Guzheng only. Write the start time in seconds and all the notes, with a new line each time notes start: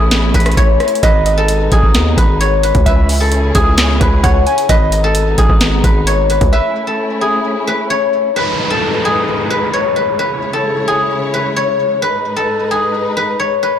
Already playing: G#4 B4 C#5
0.35 B4
0.57 C#5
1.03 B4
1.38 A4
1.72 G#4
2.18 B4
2.40 C#5
2.63 B4
2.86 B4
3.20 A4
3.55 G#4
4.01 B4
4.24 C#5
4.69 B4
5.04 A4
5.38 G#4
5.84 B4
6.07 C#5
6.30 B4
6.53 B4
6.87 A4
7.21 G#4
7.67 B4
7.90 C#5
8.36 B4
8.70 A4
9.05 G#4
9.50 B4
9.73 C#5
9.96 B4
10.19 B4
10.53 A4
10.88 G#4
11.34 B4
11.56 C#5
12.02 B4
12.36 A4
12.71 G#4
13.17 B4
13.40 C#5
13.63 B4